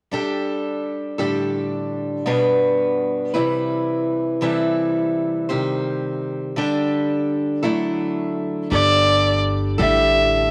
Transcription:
0.11 1.19 G3 medium
0.11 1.18 D4 medium
0.11 1.19 G4 medium
0.11 1.17 A4 medium
1.18 2.25 A2 soft
1.18 2.25 D3 medium
1.18 2.26 G3 soft
1.18 2.26 D4 medium
1.18 2.27 G4 medium
1.18 2.26 A4 medium
2.26 3.34 B2 medium
2.26 3.35 G3 medium
2.26 3.34 B3 medium
2.26 3.34 D4 medium
2.26 3.34 F#4 medium
2.26 3.32 B4 medium
3.34 4.40 C3 soft
3.34 4.41 E3 soft
3.34 4.41 G3 soft
3.34 4.41 C4 medium
3.34 4.42 E4 medium
3.34 4.41 B4 medium
4.41 5.49 C3 medium
4.41 5.49 E3 medium
4.41 5.49 G3 medium
4.41 5.49 C4 medium
4.41 5.49 E4 medium
4.41 5.48 A4 medium
5.49 6.58 C3 soft
5.49 6.56 D#3 medium
5.49 6.56 G3 medium
5.49 6.57 C4 medium
5.49 6.57 G4 medium
5.49 6.57 C5 medium
6.56 7.64 D3 medium
6.56 7.64 G3 medium
6.56 7.63 D4 medium
6.56 7.63 G4 medium
6.56 7.61 A4 medium
7.63 8.72 D3 soft
7.63 8.72 F#3 medium
7.63 8.70 A3 medium
7.63 8.70 D4 medium
7.63 8.71 E4 medium
7.63 8.71 A4 medium
8.70 9.75 G1 medium
8.70 9.79 G3 medium
8.70 9.78 D4 medium
8.70 9.79 G4 medium
8.70 9.77 A4 medium
8.70 9.39 D5 medium
9.78 10.51 A1 medium
9.78 10.51 A2 soft
9.78 10.51 D3 medium
9.78 10.51 G3 medium
9.78 10.51 D4 soft
9.78 10.51 G4 medium
9.78 10.51 A4 medium
9.78 10.47 E5 medium

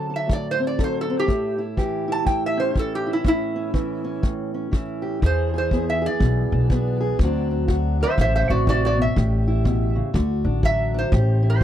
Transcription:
0.00 1.26 D3 medium
0.00 0.77 F#3 medium
0.00 0.58 C4 medium
0.00 0.12 A5 medium
0.10 0.78 A4 medium
0.16 0.30 E5 medium
0.27 1.25 A2 medium
0.27 kick medium
0.33 0.47 D5 medium
0.51 0.64 C5 medium
0.59 1.09 C4 medium
0.67 0.81 D5 medium
0.78 1.26 F#3 medium
0.78 1.78 A4 medium
0.78 kick medium
0.84 0.97 C5 medium
1.01 1.14 A4 medium
1.10 1.26 C4 medium
1.19 1.64 G4 medium
1.26 2.24 A2 medium
1.26 1.58 E4 medium
1.26 kick medium
1.58 2.07 E4 medium
1.77 2.74 E3 medium
1.77 3.23 G4 medium
1.77 kick medium
2.08 2.75 E4 medium
2.12 2.26 A5 medium
2.24 3.22 A2 medium
2.24 2.43 G5 medium
2.24 kick medium
2.46 2.61 E5 medium
2.57 3.23 C#4 medium
2.57 2.76 C5 medium
2.74 3.73 E3 medium
2.74 3.06 E4 medium
2.74 kick medium
2.79 2.94 A4 medium
2.95 3.10 G4 medium
3.06 4.72 E4 medium
3.13 3.27 E4 medium
3.24 4.21 A2 medium
3.24 3.54 C#4 medium
3.24 kick medium
3.28 4.22 E4 loud
3.56 3.73 C#4 medium
3.73 4.70 E3 medium
3.73 4.03 C#4 medium
3.73 kick medium
4.04 4.53 C#4 medium
4.22 5.19 A2 medium
4.22 kick medium
4.54 5.20 C#4 soft
4.71 5.21 E3 medium
4.71 5.20 E4 medium
4.71 kick medium
5.02 5.19 G4 medium
5.22 6.06 E2 medium
5.22 7.19 E3 medium
5.22 6.51 D4 medium
5.22 5.53 G#4 medium
5.22 5.56 C5 loud
5.22 kick medium
5.54 5.72 G#4 medium
5.58 5.89 C5 medium
5.71 6.70 B3 medium
5.71 6.01 G#4 medium
5.71 kick medium
5.90 6.05 E5 medium
6.02 6.70 G#4 medium
6.06 7.49 D5 medium
6.19 6.46 B1 loud
6.19 7.18 B2 medium
6.19 kick medium
6.52 7.10 B1 medium
6.52 7.17 D4 medium
6.70 7.17 B3 medium
6.70 6.99 G#4 medium
6.70 kick medium
7.00 7.17 G#4 medium
7.19 8.03 D2 loud
7.19 8.65 D3 medium
7.19 7.67 F#3 medium
7.19 kick medium
7.23 8.47 C4 medium
7.23 7.50 D4 medium
7.23 7.66 F#4 medium
7.51 7.99 D4 medium
7.68 9.13 F#3 medium
7.68 9.15 F#4 medium
7.68 kick medium
8.01 9.14 D4 medium
8.01 8.18 C5 medium
8.01 8.18 E5 medium
8.18 8.43 A1 loud
8.18 9.14 A2 medium
8.18 8.35 C5 medium
8.18 8.34 E5 loud
8.18 kick medium
8.36 8.50 C5 medium
8.36 8.50 E5 medium
8.49 9.07 A1 medium
8.49 9.14 C4 medium
8.49 8.65 F#4 medium
8.49 8.66 D5 medium
8.66 8.96 C3 medium
8.66 8.83 F#4 medium
8.66 kick medium
8.70 8.84 D5 loud
8.85 8.99 F#4 medium
8.85 9.01 D5 medium
8.96 9.15 B2 medium
9.02 9.96 E5 medium
9.16 10.00 A1 loud
9.16 10.12 A2 medium
9.16 10.13 G4 medium
9.16 kick medium
9.48 10.12 E4 medium
9.64 9.95 B2 medium
9.64 kick medium
9.95 10.13 C#3 medium
10.13 10.40 D2 loud
10.13 11.10 D3 medium
10.13 10.63 F#4 medium
10.13 kick medium
10.44 11.02 A1 medium
10.44 10.93 D4 medium
10.63 11.10 F#3 medium
10.63 11.13 F#4 medium
10.63 10.96 E5 loud
10.63 kick medium
10.94 11.10 D4 medium
10.99 11.45 C5 medium
11.12 11.64 A1 loud
11.12 11.64 A2 medium
11.12 11.61 G4 medium
11.12 kick medium
11.43 11.64 E4 medium
11.50 11.64 C5 medium

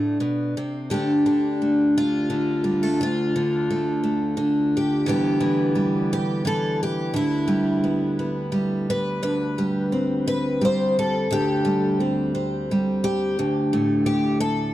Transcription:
0.00 0.20 A2 medium
0.00 0.91 D4 medium
0.20 0.55 B2 medium
0.57 0.91 C3 medium
0.90 3.00 D2 medium
0.90 1.26 D3 soft
0.90 1.61 A3 soft
0.90 1.97 D4 soft
0.90 2.66 G4 medium
1.26 2.29 D3 medium
1.62 2.64 A3 soft
1.98 3.01 F4 loud
2.30 3.34 D3 medium
2.64 2.83 G3 soft
2.83 3.00 A3 soft
3.01 5.05 D2 medium
3.01 5.08 F4 medium
3.36 4.36 D3 medium
3.70 4.02 A3 soft
4.04 5.03 A3 soft
4.37 5.07 D3 medium
4.77 5.08 G4 medium
5.06 7.12 D2 medium
5.06 5.40 E3 medium
5.06 5.75 G3 soft
5.06 7.82 B3 medium
5.06 6.12 G4 medium
5.41 6.44 E3 medium
5.75 7.48 G3 medium
6.13 6.46 G4 medium
6.45 7.17 E3 medium
6.45 6.80 A4 medium
6.83 7.15 G4 medium
7.14 9.22 D2 medium
7.14 8.88 E4 medium
7.48 8.52 G3 medium
7.84 8.18 B3 soft
8.19 9.19 B3 soft
8.52 9.58 G3 medium
8.90 9.21 B4 medium
9.23 11.29 D2 medium
9.23 10.26 B4 medium
9.58 10.60 G3 medium
9.92 11.34 C4 soft
10.28 10.62 B4 loud
10.61 11.27 G3 medium
10.61 10.98 C5 medium
10.99 12.01 A4 loud
11.31 13.37 D2 medium
11.31 13.03 G4 medium
11.65 12.68 G3 medium
12.00 12.34 C4 medium
12.35 13.42 C4 medium
12.71 13.34 G3 medium
13.04 14.05 G4 loud
13.39 14.74 D2 medium
13.73 14.74 A2 medium
14.06 14.40 G4 medium
14.40 14.74 A4 loud

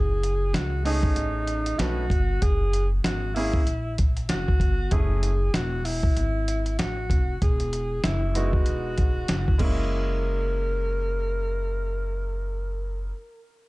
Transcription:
0.00 0.51 F#1 medium
0.00 0.56 G#4 loud
0.23 closed hi-hat medium
0.53 1.13 C#2 medium
0.53 0.85 F#4 medium
0.53 snare loud
0.53 closed hi-hat medium
0.85 1.74 A3 medium
0.85 1.74 C#4 medium
0.85 1.80 D#4 loud
0.85 1.74 D#4 medium
0.85 1.74 G#4 medium
0.85 open hi-hat medium
1.03 kick medium
1.16 1.76 A1 medium
1.16 closed hi-hat medium
1.47 closed hi-hat medium
1.66 closed hi-hat soft
1.78 2.08 B1 medium
1.78 2.02 A3 medium
1.78 2.02 C#4 medium
1.78 2.03 D#4 medium
1.78 2.44 F#4 loud
1.78 2.03 B4 medium
1.78 snare loud
1.78 closed hi-hat medium
2.10 2.40 G1 medium
2.10 kick medium
2.10 closed hi-hat medium
2.42 3.01 F#1 medium
2.42 2.87 G#4 loud
2.42 kick loud
2.42 closed hi-hat medium
2.73 closed hi-hat medium
3.04 3.64 G#1 medium
3.04 3.36 F#4 medium
3.04 snare loud
3.04 closed hi-hat medium
3.34 3.59 A#3 medium
3.34 3.59 C#4 medium
3.34 4.02 E4 medium
3.34 3.60 E4 medium
3.34 3.60 G#4 medium
3.34 open hi-hat soft
3.54 kick medium
3.67 4.26 A#1 medium
3.67 closed hi-hat medium
3.98 kick medium
3.98 closed hi-hat medium
4.17 closed hi-hat soft
4.29 4.59 F#1 medium
4.29 4.93 F#4 medium
4.29 snare loud
4.29 closed hi-hat medium
4.48 kick medium
4.60 4.90 G1 medium
4.60 kick medium
4.60 closed hi-hat medium
4.91 5.51 F#1 loud
4.91 5.30 A3 medium
4.91 5.30 C#4 medium
4.91 5.30 E4 medium
4.91 5.55 G#4 loud
4.91 5.31 G#4 medium
4.91 kick loud
4.91 closed hi-hat medium
5.23 closed hi-hat medium
5.54 6.13 E1 medium
5.54 5.86 F#4 medium
5.54 snare loud
5.54 closed hi-hat medium
5.85 6.78 E4 medium
5.85 open hi-hat medium
6.03 kick medium
6.17 6.76 G#1 medium
6.17 closed hi-hat medium
6.48 closed hi-hat medium
6.66 closed hi-hat soft
6.79 7.08 A1 medium
6.79 7.37 F#4 medium
6.79 snare loud
6.79 closed hi-hat medium
7.10 7.39 F1 medium
7.10 kick medium
7.10 closed hi-hat medium
7.42 8.01 E1 medium
7.42 8.00 G#4 medium
7.42 kick loud
7.42 closed hi-hat medium
7.60 closed hi-hat soft
7.73 closed hi-hat medium
8.04 8.64 F#1 medium
8.04 8.55 E4 medium
8.04 snare loud
8.04 closed hi-hat medium
8.35 9.24 G#3 medium
8.35 9.24 B3 medium
8.35 9.24 D#4 medium
8.35 9.24 F#4 medium
8.35 closed hi-hat medium
8.53 9.60 F#4 medium
8.53 kick medium
8.66 9.26 E1 medium
8.66 closed hi-hat medium
8.98 kick medium
8.98 closed hi-hat medium
9.28 9.58 F#1 medium
9.28 snare loud
9.28 closed hi-hat medium
9.48 kick medium
9.58 13.10 F#1 medium
9.58 13.08 G#3 medium
9.58 13.10 A#3 medium
9.58 13.12 C#4 medium
9.58 13.11 A#4 medium
9.58 kick medium
9.58 crash medium
9.64 13.14 E4 medium

